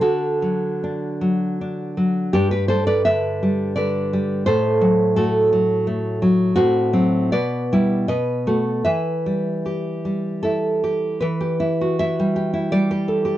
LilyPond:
\new Staff \with { instrumentName = "Nylon-string guitar" } { \time 3/4 \key a \dorian \tempo 4 = 80 << { <fis' a'>2~ <fis' a'>8 r8 | <d' g'>16 <g' b'>16 <a' c''>16 <b' d''>16 <b' e''>4 <b' d''>4 | <a' c''>4 <fis' a'>4. r8 | \key e \minor <c' fis'>4 <b' d''>4 <b' dis''>4 |
<b' e''>2 a'4 | b'4 e''4 d''4 | } \\ { d8 fis8 d'8 fis8 d'8 fis8 | g,8 g8 d8 g8 d8 g8 | a,8 fis8 a8 fis8 a8 fis8 | a,8 <fis c'>8 b,8 <g e'>8 b,8 <a fis'>8 |
e8 g8 g'8 g8 e'8 g'8 | e16 g'16 e'16 fis'16 e'16 g16 g'16 e'16 g16 g'16 a'16 g'16 | } >> }